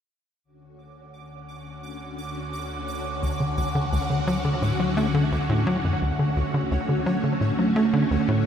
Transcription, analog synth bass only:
0, 0, Header, 1, 2, 480
1, 0, Start_track
1, 0, Key_signature, 2, "major"
1, 0, Tempo, 697674
1, 300, Time_signature, 4, 2, 24, 8
1, 5822, End_track
2, 0, Start_track
2, 0, Title_t, "Analog synth bass"
2, 0, Program_c, 0, 38
2, 2220, Note_on_c, 0, 38, 77
2, 2294, Note_off_c, 0, 38, 0
2, 2340, Note_on_c, 0, 50, 71
2, 2451, Note_off_c, 0, 50, 0
2, 2460, Note_on_c, 0, 38, 97
2, 2505, Note_off_c, 0, 38, 0
2, 2581, Note_on_c, 0, 50, 93
2, 2654, Note_off_c, 0, 50, 0
2, 2701, Note_on_c, 0, 38, 97
2, 2745, Note_off_c, 0, 38, 0
2, 2821, Note_on_c, 0, 50, 67
2, 2894, Note_off_c, 0, 50, 0
2, 2941, Note_on_c, 0, 54, 97
2, 3014, Note_off_c, 0, 54, 0
2, 3060, Note_on_c, 0, 50, 76
2, 3134, Note_off_c, 0, 50, 0
2, 3180, Note_on_c, 0, 45, 76
2, 3254, Note_off_c, 0, 45, 0
2, 3300, Note_on_c, 0, 54, 73
2, 3411, Note_off_c, 0, 54, 0
2, 3419, Note_on_c, 0, 57, 91
2, 3494, Note_off_c, 0, 57, 0
2, 3539, Note_on_c, 0, 50, 96
2, 3614, Note_off_c, 0, 50, 0
2, 3660, Note_on_c, 0, 38, 94
2, 3704, Note_off_c, 0, 38, 0
2, 3780, Note_on_c, 0, 45, 101
2, 3891, Note_off_c, 0, 45, 0
2, 3900, Note_on_c, 0, 54, 94
2, 3974, Note_off_c, 0, 54, 0
2, 4020, Note_on_c, 0, 42, 72
2, 4094, Note_off_c, 0, 42, 0
2, 4139, Note_on_c, 0, 38, 76
2, 4214, Note_off_c, 0, 38, 0
2, 4260, Note_on_c, 0, 50, 75
2, 4371, Note_off_c, 0, 50, 0
2, 4380, Note_on_c, 0, 38, 96
2, 4424, Note_off_c, 0, 38, 0
2, 4500, Note_on_c, 0, 50, 94
2, 4574, Note_off_c, 0, 50, 0
2, 4620, Note_on_c, 0, 38, 97
2, 4664, Note_off_c, 0, 38, 0
2, 4739, Note_on_c, 0, 50, 71
2, 4813, Note_off_c, 0, 50, 0
2, 4859, Note_on_c, 0, 54, 95
2, 4934, Note_off_c, 0, 54, 0
2, 4979, Note_on_c, 0, 50, 75
2, 5054, Note_off_c, 0, 50, 0
2, 5098, Note_on_c, 0, 45, 77
2, 5173, Note_off_c, 0, 45, 0
2, 5219, Note_on_c, 0, 54, 74
2, 5331, Note_off_c, 0, 54, 0
2, 5339, Note_on_c, 0, 57, 94
2, 5413, Note_off_c, 0, 57, 0
2, 5459, Note_on_c, 0, 50, 97
2, 5534, Note_off_c, 0, 50, 0
2, 5578, Note_on_c, 0, 38, 96
2, 5624, Note_off_c, 0, 38, 0
2, 5700, Note_on_c, 0, 45, 100
2, 5811, Note_off_c, 0, 45, 0
2, 5822, End_track
0, 0, End_of_file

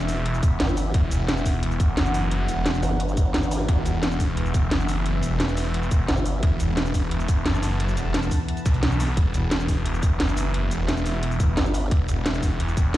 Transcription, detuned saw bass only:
0, 0, Header, 1, 2, 480
1, 0, Start_track
1, 0, Key_signature, 1, "minor"
1, 0, Tempo, 342857
1, 1319, Time_signature, 4, 2, 24, 8
1, 18159, End_track
2, 0, Start_track
2, 0, Title_t, "Detuned saw bass"
2, 0, Program_c, 0, 39
2, 120, Note_on_c, 0, 28, 90
2, 820, Note_off_c, 0, 28, 0
2, 1318, Note_on_c, 0, 28, 94
2, 2019, Note_off_c, 0, 28, 0
2, 2038, Note_on_c, 0, 28, 96
2, 2739, Note_off_c, 0, 28, 0
2, 2759, Note_on_c, 0, 30, 94
2, 3460, Note_off_c, 0, 30, 0
2, 3478, Note_on_c, 0, 28, 101
2, 3939, Note_off_c, 0, 28, 0
2, 5159, Note_on_c, 0, 28, 96
2, 5860, Note_off_c, 0, 28, 0
2, 5879, Note_on_c, 0, 28, 93
2, 6580, Note_off_c, 0, 28, 0
2, 6599, Note_on_c, 0, 30, 93
2, 7300, Note_off_c, 0, 30, 0
2, 7320, Note_on_c, 0, 28, 102
2, 7780, Note_off_c, 0, 28, 0
2, 7800, Note_on_c, 0, 28, 96
2, 8500, Note_off_c, 0, 28, 0
2, 8999, Note_on_c, 0, 28, 99
2, 9700, Note_off_c, 0, 28, 0
2, 9718, Note_on_c, 0, 28, 96
2, 10420, Note_off_c, 0, 28, 0
2, 10440, Note_on_c, 0, 30, 94
2, 11140, Note_off_c, 0, 30, 0
2, 11159, Note_on_c, 0, 28, 108
2, 11620, Note_off_c, 0, 28, 0
2, 12119, Note_on_c, 0, 35, 102
2, 12820, Note_off_c, 0, 35, 0
2, 12839, Note_on_c, 0, 28, 93
2, 13540, Note_off_c, 0, 28, 0
2, 13559, Note_on_c, 0, 28, 93
2, 14260, Note_off_c, 0, 28, 0
2, 14279, Note_on_c, 0, 30, 93
2, 14980, Note_off_c, 0, 30, 0
2, 14999, Note_on_c, 0, 28, 98
2, 15460, Note_off_c, 0, 28, 0
2, 15480, Note_on_c, 0, 28, 88
2, 16180, Note_off_c, 0, 28, 0
2, 16679, Note_on_c, 0, 28, 96
2, 17380, Note_off_c, 0, 28, 0
2, 17399, Note_on_c, 0, 28, 96
2, 18100, Note_off_c, 0, 28, 0
2, 18159, End_track
0, 0, End_of_file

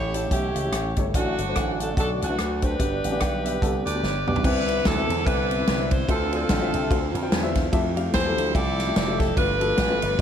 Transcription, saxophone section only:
0, 0, Header, 1, 2, 480
1, 0, Start_track
1, 0, Key_signature, 0, "major"
1, 0, Tempo, 411805
1, 1330, Time_signature, 4, 2, 24, 8
1, 11907, End_track
2, 0, Start_track
2, 0, Title_t, "Saxophone section"
2, 0, Program_c, 0, 65
2, 0, Note_on_c, 0, 64, 71
2, 0, Note_on_c, 0, 67, 64
2, 0, Note_on_c, 0, 73, 98
2, 144, Note_off_c, 0, 73, 0
2, 176, Note_on_c, 0, 69, 75
2, 317, Note_off_c, 0, 64, 0
2, 318, Note_off_c, 0, 67, 0
2, 356, Note_off_c, 0, 69, 0
2, 364, Note_on_c, 0, 61, 59
2, 367, Note_on_c, 0, 64, 53
2, 369, Note_on_c, 0, 67, 74
2, 1132, Note_off_c, 0, 67, 0
2, 1142, Note_off_c, 0, 61, 0
2, 1142, Note_off_c, 0, 64, 0
2, 1340, Note_on_c, 0, 57, 60
2, 1342, Note_on_c, 0, 62, 62
2, 1348, Note_on_c, 0, 66, 92
2, 2058, Note_off_c, 0, 66, 0
2, 2110, Note_on_c, 0, 69, 76
2, 2255, Note_off_c, 0, 57, 0
2, 2256, Note_off_c, 0, 62, 0
2, 2304, Note_off_c, 0, 69, 0
2, 2312, Note_on_c, 0, 66, 59
2, 2314, Note_on_c, 0, 62, 58
2, 2324, Note_on_c, 0, 69, 76
2, 2444, Note_off_c, 0, 69, 0
2, 2580, Note_off_c, 0, 62, 0
2, 2586, Note_off_c, 0, 66, 0
2, 2593, Note_on_c, 0, 57, 53
2, 2594, Note_on_c, 0, 62, 59
2, 2600, Note_on_c, 0, 66, 81
2, 3039, Note_off_c, 0, 66, 0
2, 3052, Note_off_c, 0, 62, 0
2, 3066, Note_on_c, 0, 62, 58
2, 3073, Note_on_c, 0, 67, 65
2, 3077, Note_on_c, 0, 71, 82
2, 3222, Note_off_c, 0, 57, 0
2, 4488, Note_off_c, 0, 67, 0
2, 4488, Note_off_c, 0, 71, 0
2, 4498, Note_on_c, 0, 74, 92
2, 4502, Note_on_c, 0, 67, 76
2, 4502, Note_on_c, 0, 71, 75
2, 4661, Note_off_c, 0, 62, 0
2, 4947, Note_off_c, 0, 74, 0
2, 4989, Note_on_c, 0, 74, 82
2, 5136, Note_off_c, 0, 67, 0
2, 5137, Note_off_c, 0, 71, 0
2, 5173, Note_off_c, 0, 74, 0
2, 5184, Note_on_c, 0, 71, 92
2, 5185, Note_on_c, 0, 64, 74
2, 5188, Note_on_c, 0, 62, 75
2, 5646, Note_off_c, 0, 62, 0
2, 5650, Note_off_c, 0, 64, 0
2, 5660, Note_on_c, 0, 62, 65
2, 5663, Note_off_c, 0, 71, 0
2, 5664, Note_on_c, 0, 64, 69
2, 5665, Note_on_c, 0, 69, 92
2, 6116, Note_off_c, 0, 64, 0
2, 6120, Note_off_c, 0, 62, 0
2, 6130, Note_on_c, 0, 64, 60
2, 6133, Note_on_c, 0, 71, 85
2, 6134, Note_on_c, 0, 62, 67
2, 6143, Note_off_c, 0, 69, 0
2, 6894, Note_off_c, 0, 71, 0
2, 6911, Note_on_c, 0, 72, 90
2, 7045, Note_off_c, 0, 64, 0
2, 7047, Note_off_c, 0, 62, 0
2, 7104, Note_off_c, 0, 72, 0
2, 7105, Note_on_c, 0, 60, 67
2, 7106, Note_on_c, 0, 69, 87
2, 7107, Note_on_c, 0, 65, 65
2, 7362, Note_off_c, 0, 69, 0
2, 7384, Note_off_c, 0, 60, 0
2, 7387, Note_off_c, 0, 65, 0
2, 7398, Note_on_c, 0, 60, 61
2, 7401, Note_on_c, 0, 65, 61
2, 7402, Note_on_c, 0, 69, 81
2, 8296, Note_off_c, 0, 60, 0
2, 8297, Note_off_c, 0, 65, 0
2, 8298, Note_off_c, 0, 69, 0
2, 9484, Note_on_c, 0, 72, 108
2, 9491, Note_on_c, 0, 69, 79
2, 9494, Note_on_c, 0, 64, 83
2, 9929, Note_off_c, 0, 72, 0
2, 9957, Note_off_c, 0, 69, 0
2, 9966, Note_on_c, 0, 74, 107
2, 9971, Note_on_c, 0, 69, 77
2, 9972, Note_on_c, 0, 67, 75
2, 10399, Note_off_c, 0, 64, 0
2, 10414, Note_off_c, 0, 74, 0
2, 10428, Note_on_c, 0, 74, 102
2, 10694, Note_off_c, 0, 74, 0
2, 10700, Note_off_c, 0, 69, 0
2, 10714, Note_on_c, 0, 69, 91
2, 10877, Note_off_c, 0, 67, 0
2, 10916, Note_off_c, 0, 69, 0
2, 10921, Note_on_c, 0, 71, 111
2, 10922, Note_on_c, 0, 65, 70
2, 10926, Note_on_c, 0, 62, 71
2, 11907, Note_off_c, 0, 62, 0
2, 11907, Note_off_c, 0, 65, 0
2, 11907, Note_off_c, 0, 71, 0
2, 11907, End_track
0, 0, End_of_file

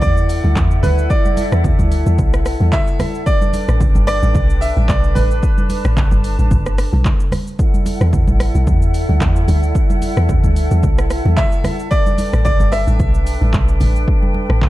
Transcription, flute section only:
0, 0, Header, 1, 2, 480
1, 0, Start_track
1, 0, Key_signature, 1, "minor"
1, 0, Tempo, 540541
1, 980, Time_signature, 4, 2, 24, 8
1, 13045, End_track
2, 0, Start_track
2, 0, Title_t, "Flute section"
2, 0, Program_c, 0, 73
2, 0, Note_on_c, 0, 64, 86
2, 0, Note_on_c, 0, 69, 74
2, 0, Note_on_c, 0, 74, 73
2, 0, Note_on_c, 0, 78, 89
2, 2864, Note_off_c, 0, 74, 0
2, 2864, Note_off_c, 0, 78, 0
2, 2865, Note_off_c, 0, 64, 0
2, 2900, Note_on_c, 0, 79, 88
2, 2901, Note_on_c, 0, 62, 86
2, 2901, Note_on_c, 0, 71, 78
2, 4801, Note_off_c, 0, 79, 0
2, 4822, Note_on_c, 0, 81, 90
2, 6469, Note_off_c, 0, 81, 0
2, 6477, Note_off_c, 0, 62, 0
2, 6479, Note_off_c, 0, 71, 0
2, 6495, Note_off_c, 0, 69, 0
2, 6741, Note_on_c, 0, 64, 82
2, 6741, Note_on_c, 0, 69, 75
2, 6741, Note_on_c, 0, 74, 74
2, 6741, Note_on_c, 0, 78, 86
2, 10545, Note_off_c, 0, 64, 0
2, 10545, Note_off_c, 0, 74, 0
2, 10545, Note_off_c, 0, 78, 0
2, 10582, Note_on_c, 0, 62, 84
2, 10582, Note_on_c, 0, 71, 79
2, 10582, Note_on_c, 0, 79, 92
2, 13045, Note_off_c, 0, 62, 0
2, 13045, Note_off_c, 0, 69, 0
2, 13045, Note_off_c, 0, 71, 0
2, 13045, Note_off_c, 0, 79, 0
2, 13045, End_track
0, 0, End_of_file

